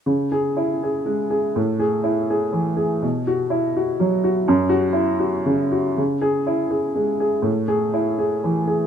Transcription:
\new Staff \with { instrumentName = "Upright piano" } { \time 3/4 \key cis \minor \tempo 4 = 122 << { r8 gis'4 r4. | r8 gis'4 r4. | r8 fis'4 r4. | r8 fis'4 r4. |
r8 gis'4 r4. | r8 gis'4 r4. | } \\ { cis4 e'8 gis'8 gis8 gis'8 | a,4 e'8 gis'8 e8 gis'8 | b,4 e'8 fis'8 fis8 fis'8 | fis,4 e'8 fis'8 cis8 fis'8 |
cis4 e'8 gis'8 gis8 gis'8 | a,4 e'8 gis'8 e8 gis'8 | } >> }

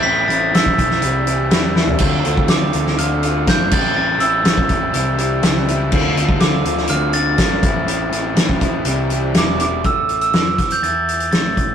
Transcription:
<<
  \new Staff \with { instrumentName = "Glockenspiel" } { \time 4/4 \key a \minor \tempo 4 = 122 b'''8 a'''8 e'''4. r4. | r4 d'''4 f'''4 g'''8 a'''8 | a'''8 e'''2 r4. | r4 d'''4 f'''8 a'''4.~ |
a'''2. d'''8 d'''8 | e'''8. e'''4 g'''16 a'''4 a'''4 | }
  \new Staff \with { instrumentName = "Clean electric guitar" } { \time 4/4 \key a \minor <a, e b c' e'>8 <a, e b c' e'>8 <a, e b c' e'>8 <a, e b c' e'>8 <c e g c' e'>8 <c e g c' e'>8 <c e g c' e'>8 <c e g c' e'>8 | <d a c' f'>8 <d a c' f'>8 <d a c' f'>8 <d a c' f'>8 <d a c' f'>8 <d a c' f'>8 <d a c' f'>8 <a, e b c' e'>8 | <a, e b c' e'>8 <a, e b c' e'>8 <a, e b c' e'>8 <a, e b c' e'>8 <c e g c' e'>8 <c e g c' e'>8 <c e g c' e'>8 <c e g c' e'>8 | <d a c' f'>8 <d a c' f'>8 <d a c' f'>8 <d a c' f'>8 <d a c' f'>8 <d a c' f'>8 <d a c' f'>8 <a, e b c' e'>8 |
<a, e b c' e'>8 <a, e b c' e'>8 <a, e b c' e'>8 <a, e b c' e'>8 <c e g c' e'>8 <c e g c' e'>8 <e, b, e g b e'>8 <e, b, e g b e'>8 | <a, a>4 <f f'>8 r8 <e e'>4 <a, a>4 | }
  \new Staff \with { instrumentName = "Overdriven electric guitar" } { \time 4/4 \key a \minor <a, e a c' e'>8 <a, e a c' e'>8 <a, e a c' e'>8 <a, e a c' e'>8 <c e g c' e'>8 <c e g c' e'>8 <c e g c' e'>8 <c e g c' e'>8 | <d a d' f'>8 <d a d' f'>8 <d a d' f'>8 <d a d' f'>8 <d a d' f'>8 <d a d' f'>8 <d a d' f'>8 <a, e a c' e'>8 | <a, e a c' e'>8 <a, e a c' e'>8 <a, e a c' e'>8 <a, e a c' e'>8 <c e g c' e'>8 <c e g c' e'>8 <c e g c' e'>8 <c e g c' e'>8 | <d a d' f'>8 <d a d' f'>8 <d a d' f'>8 <d a d' f'>8 <d a d' f'>8 <d a d' f'>8 <d a d' f'>8 <a, e a c' e'>8 |
<a, e a c' e'>8 <a, e a c' e'>8 <a, e a c' e'>8 <a, e a c' e'>8 <c e g c' e'>8 <c e g c' e'>8 <e, b, e g b e'>8 <e, b, e g b e'>8 | r1 | }
  \new Staff \with { instrumentName = "Picked electric bass" } { \clef bass \time 4/4 \key a \minor a,,8 a,,8 a,,8 b,,8 c,4 e,4 | d,8 d,8 d,8 d,8 d,4 r8 a,,8 | a,,8 a,,8 a,,8 a,,8 c,4 cis,4 | d,8 d,8 d,8 d,8 d,4 gis,,8 a,,8 |
a,,8 a,,8 a,,8 a,,8 c,4 e,,4 | a,,4 f,8 r8 e,4 a,,4 | }
  \new DrumStaff \with { instrumentName = "Drums" } \drummode { \time 4/4 r8 hh8 <hh sn>16 bd16 <hh bd>16 sn16 hh8 hh8 <hh sn>8 sn16 tomfh16 | <cymc bd>8 hh16 bd16 <hh sn>8 hh16 sn16 hh8 hh8 <hh bd sn>8 <cymc bd>8 | r8 hh8 <hh sn>16 bd16 <hh bd>8 hh8 hh8 <hh sn>8 hh8 | <cymc bd>8 hh16 bd16 <hh sn>8 hh16 sn16 hh8 hh8 <hh bd sn>8 <hh bd>8 |
hh8 hh8 <hh sn>16 bd16 <hh bd>8 hh8 hh8 <hh sn>8 hh8 | <hh bd>8 hh16 hh16 <hh sn>8 <hh bd sn>16 hh16 hh8 hh16 hh16 <hh sn>8 <hh bd>8 | }
>>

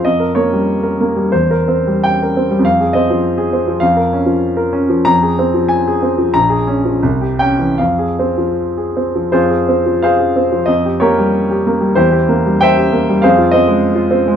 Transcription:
<<
  \new Staff \with { instrumentName = "Grand piano" } { \time 2/4 \key f \minor \tempo 4 = 94 ees''8 des''4 r8 | c''4 g''4 | f''8 ees''4 r8 | f''2 |
bes''4 aes''4 | bes''4. g''8 | f''4. r8 | <f' aes' c''>4 <aes' c'' f''>4 |
ees''8 <g' bes' des''>4 r8 | <e' g' c''>4 <c'' e'' g''>4 | <aes' c'' f''>8 ees''4 r8 | }
  \new Staff \with { instrumentName = "Grand piano" } { \time 2/4 \key f \minor f,16 bes'16 bes16 g8 bes'16 bes16 g16 | e,16 bes'16 c'16 g8 bes'16 c'16 g16 | f,16 aes'16 c'16 f8 aes'16 c'16 f16 | f,16 bes'16 des'16 f8 bes'16 des'16 f16 |
f,16 aes'16 c'16 f8 aes'16 c'16 f16 | bes,,16 aes'16 des'16 f16 c,16 g'16 des'16 e16 | f,16 aes'16 c'16 f8 aes'16 c'16 f16 | f,16 aes'16 c'16 f8 aes'16 c'16 f16 |
f,16 g'16 bes16 g8 g'16 bes16 g16 | e,16 g'16 bes16 g8 g'16 bes16 g16 | f,16 f'16 c'16 aes8 f'16 c'16 aes16 | }
>>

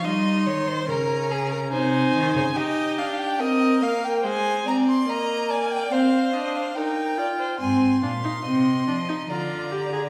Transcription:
<<
  \new Staff \with { instrumentName = "Violin" } { \time 3/4 \key ees \mixolydian \tempo 4 = 71 c'''4 bes''4 aes''4 | ees''8 f''16 g''16 ees''8 f''16 g''16 aes''8 bes''16 c'''16 | bes''8 aes''16 g''16 f''8 ees''16 f''16 g''4 | c'''2 bes''4 | }
  \new Staff \with { instrumentName = "Violin" } { \time 3/4 \key ees \mixolydian ees''8 des''16 c''16 bes'8 aes'16 bes'16 c''4 | g'4 bes'8 bes'8 c''8 d''8 | ees''8 d''8 c''4 bes'8 d''16 c''16 | aes''8 f''8 ees''4 d''4 | }
  \new Staff \with { instrumentName = "Viola" } { \time 3/4 \key ees \mixolydian ees'4 des'4 ees'4 | ees'8 d'8 c'8 bes8 aes8 c'8 | bes4 c'8 d'8 ees'8 f'8 | c'8 d'16 ees'16 c'8 d'16 ees'16 f'8 g'16 aes'16 | }
  \new Staff \with { instrumentName = "Cello" } { \clef bass \time 3/4 \key ees \mixolydian g8 ees8 des4 c8 ees16 des16 | r2. | r2. | aes,8 bes,8 c8 f8 d4 | }
>>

